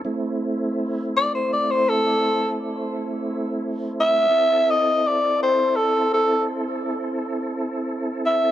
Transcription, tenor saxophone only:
X:1
M:12/8
L:1/16
Q:3/8=56
K:Am
V:1 name="Tenor saxophone"
z6 d c d c A4 z8 e2- | e2 ^d2 =d2 c2 A2 A2 z8 z2 e2 |]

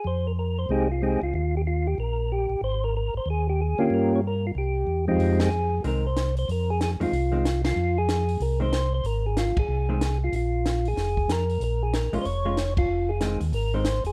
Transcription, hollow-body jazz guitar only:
X:1
M:4/4
L:1/8
Q:"Swing" 1/4=187
K:Fm
V:1 name="Hollow-body jazz guitar" clef=bass
z8 | z8 | z8 | z8 |
z4 [E,A,C] z3 | z3 [E,A,C] z [E,A,C] z2 | z4 z [E,A,C] z2 | z4 z [E,A,C] z2 |
z8 | z3 [A,DF] z [A,DF] z2 | z2 [E,A,C] z2 [E,A,C] z2 |]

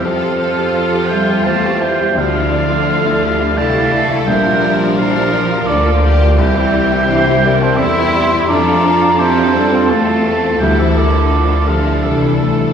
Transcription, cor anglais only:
X:1
M:3/4
L:1/16
Q:1/4=85
K:F
V:1 name="Cor anglais"
f6 g2 a2 g2 | f8 a4 | g3 z f4 d2 z2 | g6- g c e4 |
d4 c4 a4 | g e d4 f2 e4 |]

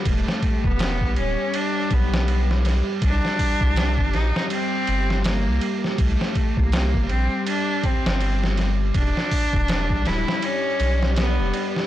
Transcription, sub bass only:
X:1
M:4/4
L:1/16
Q:"Swing 16ths" 1/4=81
K:Em
V:1 name="Sub bass" clef=bass
E,,, z2 E,,,2 B,,, D,,, z3 B,,,4- B,,, z | C,, z2 C,,2 G,,, ^A,,, z3 G,,,3 C,, z2 | C,, z2 C,,2 G,,, ^A,,, z4 G,,,4- G,,, | E,,, z2 E,,,2 B,,, D,,, z3 B,,,3 E,,, z2 |]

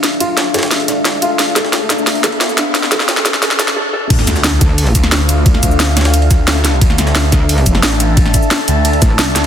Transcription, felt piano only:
X:1
M:4/4
L:1/8
Q:1/4=177
K:Dm
V:1 name="Felt piano"
z F z A z D z F | z A z D z A z D | z A z A A A A A | z8 |
z8 | z8 | z8 |]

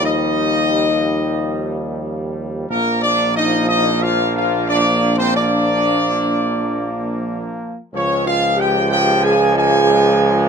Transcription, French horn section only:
X:1
M:4/4
L:1/16
Q:1/4=92
K:Bbmix
V:1 name="French horn section"
E12- E2 z2 | B,2 D2 E2 E2 F2 F2 D3 C | D12- D2 z2 | _D2 F2 G2 G2 A2 A6 |]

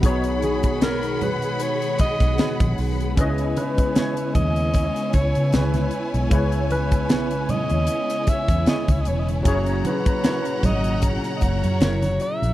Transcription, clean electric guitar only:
X:1
M:4/4
L:1/8
Q:"Swing 16ths" 1/4=76
K:C#dor
V:1 name="Clean electric guitar"
z2 [B,DGB] z3 [B,DGB] z | z2 [B,EGc] z3 [B,EGc] z | z2 [B,EGc] z3 [B,EGc] z | z2 [CEAc] z3 [CEAc] z |]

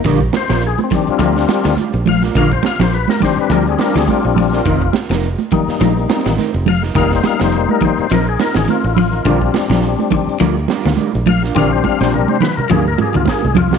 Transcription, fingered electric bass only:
X:1
M:4/4
L:1/16
Q:"Swing 16ths" 1/4=104
K:Bb
V:1 name="Fingered electric bass" clef=bass
B,,,2 z B,,,2 z3 D,,2 z D,, z B,,,3 | B,,,2 z B,,,2 z3 D,,2 z D,, z B,,,3 | F,,,2 z F,,,2 z3 B,,,2 z A,,, z F,,,3 | F,,,2 z F,,,2 z3 B,,,2 z A,,, z A,,,3 |
B,,,2 z B,,,2 z3 D,,2 z D,, z B,,,3 | B,,,2 z B,,,2 z3 D,,2 z D,, z C,,3 |]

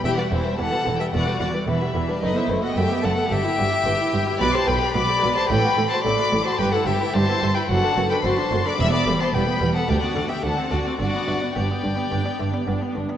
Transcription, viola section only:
X:1
M:4/4
L:1/16
Q:1/4=110
K:G
V:1 name="Viola section"
E, G, E, G, E, G, E, G, E, G, E, G, E, G, E, G, | A, B, A, B, A, B, A, B, G E G E G E G E | B G B G B G B G A F A F A F A F | G E G E G E G E F D F D F D F D |
G, B, G, B, G, B, G, B, D B, D B, D C D C | D B, D B, D B, D B, D B, D B, D B, D B, |]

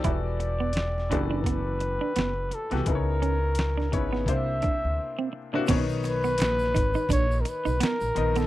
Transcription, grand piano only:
X:1
M:4/4
L:1/16
Q:"Swing 16ths" 1/4=85
K:Bm
V:1 name="Grand piano"
[E,B,FGAd]4- [E,B,FGAd] z [E,B,FGAd]6- [E,B,FGAd] z2 [E,B,FGAB] | [C,B,^DEBc]4- [C,B,DEBc] z [C,B,DEc]2 [=C,_B,=DE=c]6 z [C,B,DEF] | [^D,B,C^DBc]6- [D,B,CDBc] z6 z [D,B,D^A^d]2 |]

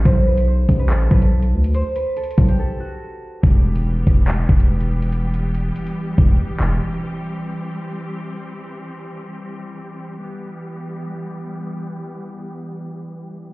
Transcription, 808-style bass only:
X:1
M:4/4
L:1/16
Q:1/4=142
K:Em
V:1 name="808-style bass" clef=bass
B,,,6 A,,,4 B,,,4 D,,2- | D,, z4 z B,,,2 z8 | E,,,6 E,,,4 E,,,6- | E,,,6 z4 E,,,2 z2 E,,,2 |
z16 | z16 | z16 | z16 |]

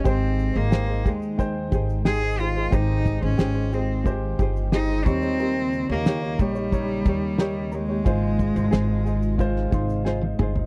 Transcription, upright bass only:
X:1
M:4/4
L:1/16
Q:1/4=90
K:Ab
V:1 name="Upright bass" clef=bass
A,,,3 A,,,3 E,,4 A,,,6 | A,,,3 A,,, A,,,6 G,,,4 E,,2- | E,,3 E,,3 B,,,4 E,,6 | A,,,3 A,,, A,,,6 A,,,4 G,,,2 |]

